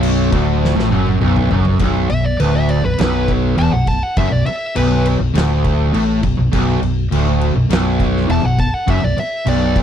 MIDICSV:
0, 0, Header, 1, 7, 480
1, 0, Start_track
1, 0, Key_signature, 2, "minor"
1, 0, Tempo, 589391
1, 1472, Time_signature, 4, 2, 24, 8
1, 8003, End_track
2, 0, Start_track
2, 0, Title_t, "Lead electric guitar"
2, 0, Program_c, 0, 29
2, 1712, Note_on_c, 0, 76, 98
2, 1829, Note_off_c, 0, 76, 0
2, 1831, Note_on_c, 0, 74, 87
2, 1953, Note_off_c, 0, 74, 0
2, 1953, Note_on_c, 0, 71, 87
2, 2070, Note_off_c, 0, 71, 0
2, 2082, Note_on_c, 0, 76, 80
2, 2195, Note_off_c, 0, 76, 0
2, 2196, Note_on_c, 0, 74, 87
2, 2312, Note_off_c, 0, 74, 0
2, 2323, Note_on_c, 0, 71, 79
2, 2436, Note_off_c, 0, 71, 0
2, 2446, Note_on_c, 0, 71, 88
2, 2674, Note_off_c, 0, 71, 0
2, 2922, Note_on_c, 0, 81, 105
2, 3031, Note_off_c, 0, 81, 0
2, 3035, Note_on_c, 0, 78, 88
2, 3159, Note_off_c, 0, 78, 0
2, 3159, Note_on_c, 0, 81, 75
2, 3282, Note_off_c, 0, 81, 0
2, 3282, Note_on_c, 0, 78, 90
2, 3396, Note_off_c, 0, 78, 0
2, 3399, Note_on_c, 0, 76, 75
2, 3520, Note_off_c, 0, 76, 0
2, 3520, Note_on_c, 0, 74, 85
2, 3632, Note_off_c, 0, 74, 0
2, 3635, Note_on_c, 0, 76, 83
2, 3869, Note_off_c, 0, 76, 0
2, 3879, Note_on_c, 0, 71, 95
2, 4111, Note_off_c, 0, 71, 0
2, 6770, Note_on_c, 0, 81, 97
2, 6877, Note_off_c, 0, 81, 0
2, 6889, Note_on_c, 0, 78, 88
2, 7000, Note_off_c, 0, 78, 0
2, 7000, Note_on_c, 0, 81, 86
2, 7117, Note_off_c, 0, 81, 0
2, 7117, Note_on_c, 0, 78, 93
2, 7248, Note_off_c, 0, 78, 0
2, 7248, Note_on_c, 0, 76, 81
2, 7356, Note_off_c, 0, 76, 0
2, 7365, Note_on_c, 0, 74, 85
2, 7474, Note_off_c, 0, 74, 0
2, 7488, Note_on_c, 0, 76, 87
2, 7711, Note_off_c, 0, 76, 0
2, 7724, Note_on_c, 0, 74, 92
2, 7949, Note_off_c, 0, 74, 0
2, 8003, End_track
3, 0, Start_track
3, 0, Title_t, "Distorted electric guitar"
3, 0, Program_c, 1, 30
3, 0, Note_on_c, 1, 35, 101
3, 255, Note_off_c, 1, 35, 0
3, 258, Note_on_c, 1, 38, 104
3, 613, Note_off_c, 1, 38, 0
3, 616, Note_on_c, 1, 45, 103
3, 734, Note_off_c, 1, 45, 0
3, 738, Note_on_c, 1, 42, 96
3, 977, Note_off_c, 1, 42, 0
3, 983, Note_on_c, 1, 35, 108
3, 1220, Note_off_c, 1, 35, 0
3, 1227, Note_on_c, 1, 42, 103
3, 1463, Note_off_c, 1, 42, 0
3, 1467, Note_on_c, 1, 35, 109
3, 1701, Note_off_c, 1, 35, 0
3, 1711, Note_on_c, 1, 35, 70
3, 1904, Note_off_c, 1, 35, 0
3, 1952, Note_on_c, 1, 38, 96
3, 2306, Note_off_c, 1, 38, 0
3, 2318, Note_on_c, 1, 35, 68
3, 2426, Note_off_c, 1, 35, 0
3, 2435, Note_on_c, 1, 35, 104
3, 2906, Note_off_c, 1, 35, 0
3, 2909, Note_on_c, 1, 40, 102
3, 3025, Note_off_c, 1, 40, 0
3, 3045, Note_on_c, 1, 35, 71
3, 3233, Note_off_c, 1, 35, 0
3, 3397, Note_on_c, 1, 42, 118
3, 3506, Note_off_c, 1, 42, 0
3, 3509, Note_on_c, 1, 35, 69
3, 3622, Note_off_c, 1, 35, 0
3, 3872, Note_on_c, 1, 35, 97
3, 4222, Note_off_c, 1, 35, 0
3, 4231, Note_on_c, 1, 35, 73
3, 4342, Note_off_c, 1, 35, 0
3, 4346, Note_on_c, 1, 38, 106
3, 4824, Note_off_c, 1, 38, 0
3, 4830, Note_on_c, 1, 45, 104
3, 5066, Note_off_c, 1, 45, 0
3, 5075, Note_on_c, 1, 35, 74
3, 5184, Note_off_c, 1, 35, 0
3, 5193, Note_on_c, 1, 35, 70
3, 5300, Note_off_c, 1, 35, 0
3, 5310, Note_on_c, 1, 35, 109
3, 5545, Note_off_c, 1, 35, 0
3, 5555, Note_on_c, 1, 35, 72
3, 5747, Note_off_c, 1, 35, 0
3, 5791, Note_on_c, 1, 38, 96
3, 6144, Note_off_c, 1, 38, 0
3, 6147, Note_on_c, 1, 35, 76
3, 6258, Note_off_c, 1, 35, 0
3, 6268, Note_on_c, 1, 35, 103
3, 6740, Note_off_c, 1, 35, 0
3, 6743, Note_on_c, 1, 40, 104
3, 6860, Note_off_c, 1, 40, 0
3, 6867, Note_on_c, 1, 35, 71
3, 7061, Note_off_c, 1, 35, 0
3, 7222, Note_on_c, 1, 42, 113
3, 7339, Note_off_c, 1, 42, 0
3, 7347, Note_on_c, 1, 35, 68
3, 7460, Note_off_c, 1, 35, 0
3, 7702, Note_on_c, 1, 35, 98
3, 8003, Note_off_c, 1, 35, 0
3, 8003, End_track
4, 0, Start_track
4, 0, Title_t, "Fingered electric bass"
4, 0, Program_c, 2, 33
4, 0, Note_on_c, 2, 23, 104
4, 236, Note_off_c, 2, 23, 0
4, 266, Note_on_c, 2, 26, 98
4, 603, Note_off_c, 2, 26, 0
4, 620, Note_on_c, 2, 33, 96
4, 736, Note_off_c, 2, 33, 0
4, 743, Note_on_c, 2, 30, 95
4, 970, Note_off_c, 2, 30, 0
4, 988, Note_on_c, 2, 23, 88
4, 1213, Note_off_c, 2, 23, 0
4, 1234, Note_on_c, 2, 30, 94
4, 1457, Note_off_c, 2, 30, 0
4, 1469, Note_on_c, 2, 23, 96
4, 1695, Note_off_c, 2, 23, 0
4, 1710, Note_on_c, 2, 23, 75
4, 1935, Note_off_c, 2, 23, 0
4, 1955, Note_on_c, 2, 26, 97
4, 2290, Note_off_c, 2, 26, 0
4, 2316, Note_on_c, 2, 23, 84
4, 2427, Note_off_c, 2, 23, 0
4, 2437, Note_on_c, 2, 23, 98
4, 2884, Note_off_c, 2, 23, 0
4, 2919, Note_on_c, 2, 28, 92
4, 3030, Note_off_c, 2, 28, 0
4, 3036, Note_on_c, 2, 23, 80
4, 3260, Note_off_c, 2, 23, 0
4, 3398, Note_on_c, 2, 30, 99
4, 3509, Note_off_c, 2, 30, 0
4, 3521, Note_on_c, 2, 23, 79
4, 3631, Note_off_c, 2, 23, 0
4, 3878, Note_on_c, 2, 23, 102
4, 4212, Note_off_c, 2, 23, 0
4, 4234, Note_on_c, 2, 23, 80
4, 4347, Note_off_c, 2, 23, 0
4, 4354, Note_on_c, 2, 26, 95
4, 4803, Note_off_c, 2, 26, 0
4, 4840, Note_on_c, 2, 33, 95
4, 5062, Note_off_c, 2, 33, 0
4, 5078, Note_on_c, 2, 23, 78
4, 5189, Note_off_c, 2, 23, 0
4, 5200, Note_on_c, 2, 23, 84
4, 5309, Note_off_c, 2, 23, 0
4, 5317, Note_on_c, 2, 23, 99
4, 5539, Note_off_c, 2, 23, 0
4, 5550, Note_on_c, 2, 23, 81
4, 5775, Note_off_c, 2, 23, 0
4, 5796, Note_on_c, 2, 26, 97
4, 6129, Note_off_c, 2, 26, 0
4, 6148, Note_on_c, 2, 23, 77
4, 6262, Note_off_c, 2, 23, 0
4, 6270, Note_on_c, 2, 23, 100
4, 6718, Note_off_c, 2, 23, 0
4, 6752, Note_on_c, 2, 28, 98
4, 6863, Note_off_c, 2, 28, 0
4, 6873, Note_on_c, 2, 23, 84
4, 7095, Note_off_c, 2, 23, 0
4, 7233, Note_on_c, 2, 30, 101
4, 7343, Note_off_c, 2, 30, 0
4, 7356, Note_on_c, 2, 23, 80
4, 7465, Note_off_c, 2, 23, 0
4, 7705, Note_on_c, 2, 23, 105
4, 8003, Note_off_c, 2, 23, 0
4, 8003, End_track
5, 0, Start_track
5, 0, Title_t, "Muted distorted electric guitar strokes"
5, 3632, Note_on_c, 9, 29, 56
5, 3714, Note_off_c, 9, 29, 0
5, 7470, Note_on_c, 9, 29, 55
5, 7551, Note_off_c, 9, 29, 0
5, 8003, End_track
6, 0, Start_track
6, 0, Title_t, "Muted fingered electric bass strokes"
6, 3643, Note_on_c, 9, 29, 42
6, 3724, Note_off_c, 9, 29, 0
6, 7472, Note_on_c, 9, 29, 41
6, 7553, Note_off_c, 9, 29, 0
6, 8003, End_track
7, 0, Start_track
7, 0, Title_t, "Drums"
7, 24, Note_on_c, 9, 49, 89
7, 106, Note_off_c, 9, 49, 0
7, 265, Note_on_c, 9, 36, 99
7, 265, Note_on_c, 9, 49, 64
7, 346, Note_off_c, 9, 36, 0
7, 347, Note_off_c, 9, 49, 0
7, 528, Note_on_c, 9, 38, 67
7, 610, Note_off_c, 9, 38, 0
7, 646, Note_on_c, 9, 38, 57
7, 727, Note_off_c, 9, 38, 0
7, 750, Note_on_c, 9, 48, 71
7, 831, Note_off_c, 9, 48, 0
7, 868, Note_on_c, 9, 48, 72
7, 950, Note_off_c, 9, 48, 0
7, 990, Note_on_c, 9, 47, 86
7, 1071, Note_off_c, 9, 47, 0
7, 1111, Note_on_c, 9, 45, 86
7, 1192, Note_off_c, 9, 45, 0
7, 1227, Note_on_c, 9, 43, 95
7, 1309, Note_off_c, 9, 43, 0
7, 1344, Note_on_c, 9, 43, 92
7, 1425, Note_off_c, 9, 43, 0
7, 1460, Note_on_c, 9, 49, 71
7, 1468, Note_on_c, 9, 36, 105
7, 1542, Note_off_c, 9, 49, 0
7, 1549, Note_off_c, 9, 36, 0
7, 1707, Note_on_c, 9, 49, 57
7, 1788, Note_off_c, 9, 49, 0
7, 1951, Note_on_c, 9, 49, 74
7, 2033, Note_off_c, 9, 49, 0
7, 2188, Note_on_c, 9, 49, 53
7, 2270, Note_off_c, 9, 49, 0
7, 2430, Note_on_c, 9, 49, 79
7, 2452, Note_on_c, 9, 38, 117
7, 2512, Note_off_c, 9, 49, 0
7, 2534, Note_off_c, 9, 38, 0
7, 2673, Note_on_c, 9, 36, 84
7, 2673, Note_on_c, 9, 49, 58
7, 2755, Note_off_c, 9, 36, 0
7, 2755, Note_off_c, 9, 49, 0
7, 2914, Note_on_c, 9, 49, 72
7, 2996, Note_off_c, 9, 49, 0
7, 3152, Note_on_c, 9, 49, 61
7, 3153, Note_on_c, 9, 36, 74
7, 3234, Note_off_c, 9, 49, 0
7, 3235, Note_off_c, 9, 36, 0
7, 3392, Note_on_c, 9, 49, 76
7, 3396, Note_on_c, 9, 36, 116
7, 3474, Note_off_c, 9, 49, 0
7, 3477, Note_off_c, 9, 36, 0
7, 3634, Note_on_c, 9, 49, 62
7, 3715, Note_off_c, 9, 49, 0
7, 3874, Note_on_c, 9, 49, 86
7, 3956, Note_off_c, 9, 49, 0
7, 4117, Note_on_c, 9, 49, 65
7, 4198, Note_off_c, 9, 49, 0
7, 4358, Note_on_c, 9, 49, 84
7, 4380, Note_on_c, 9, 38, 113
7, 4440, Note_off_c, 9, 49, 0
7, 4462, Note_off_c, 9, 38, 0
7, 4597, Note_on_c, 9, 36, 89
7, 4597, Note_on_c, 9, 49, 61
7, 4678, Note_off_c, 9, 49, 0
7, 4679, Note_off_c, 9, 36, 0
7, 4839, Note_on_c, 9, 49, 78
7, 4921, Note_off_c, 9, 49, 0
7, 5074, Note_on_c, 9, 49, 59
7, 5077, Note_on_c, 9, 36, 78
7, 5155, Note_off_c, 9, 49, 0
7, 5158, Note_off_c, 9, 36, 0
7, 5316, Note_on_c, 9, 49, 79
7, 5318, Note_on_c, 9, 36, 108
7, 5398, Note_off_c, 9, 49, 0
7, 5399, Note_off_c, 9, 36, 0
7, 5559, Note_on_c, 9, 49, 60
7, 5641, Note_off_c, 9, 49, 0
7, 5799, Note_on_c, 9, 49, 77
7, 5881, Note_off_c, 9, 49, 0
7, 6037, Note_on_c, 9, 49, 55
7, 6118, Note_off_c, 9, 49, 0
7, 6274, Note_on_c, 9, 49, 78
7, 6296, Note_on_c, 9, 38, 120
7, 6355, Note_off_c, 9, 49, 0
7, 6377, Note_off_c, 9, 38, 0
7, 6513, Note_on_c, 9, 36, 84
7, 6515, Note_on_c, 9, 49, 57
7, 6594, Note_off_c, 9, 36, 0
7, 6596, Note_off_c, 9, 49, 0
7, 6654, Note_on_c, 9, 38, 35
7, 6735, Note_off_c, 9, 38, 0
7, 6756, Note_on_c, 9, 49, 72
7, 6837, Note_off_c, 9, 49, 0
7, 6992, Note_on_c, 9, 36, 82
7, 6993, Note_on_c, 9, 49, 53
7, 7074, Note_off_c, 9, 36, 0
7, 7074, Note_off_c, 9, 49, 0
7, 7231, Note_on_c, 9, 36, 117
7, 7232, Note_on_c, 9, 49, 81
7, 7313, Note_off_c, 9, 36, 0
7, 7314, Note_off_c, 9, 49, 0
7, 7474, Note_on_c, 9, 49, 61
7, 7556, Note_off_c, 9, 49, 0
7, 7708, Note_on_c, 9, 49, 82
7, 7790, Note_off_c, 9, 49, 0
7, 7947, Note_on_c, 9, 36, 83
7, 7949, Note_on_c, 9, 49, 62
7, 8003, Note_off_c, 9, 36, 0
7, 8003, Note_off_c, 9, 49, 0
7, 8003, End_track
0, 0, End_of_file